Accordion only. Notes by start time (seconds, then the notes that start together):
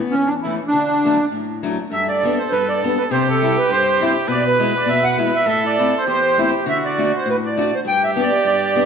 Already playing: B3
0.11 C#4
0.26 D4
0.42 E4
0.68 D4
1.93 E5
2.08 D5
2.39 C5
2.51 B4
2.69 D5
2.98 B4
3.12 C5
3.28 A4
3.57 B4
3.71 C5
4.31 D5
4.47 B4
4.77 D5
4.89 E5
5.04 F#5
5.34 E5
5.48 E5
5.66 D5
5.97 C5
6.08 C5
6.69 E5
6.85 D5
7.16 C5
7.30 B4
7.45 D5
7.75 C5
7.88 G5
8.04 E5
8.21 D5
8.46 D5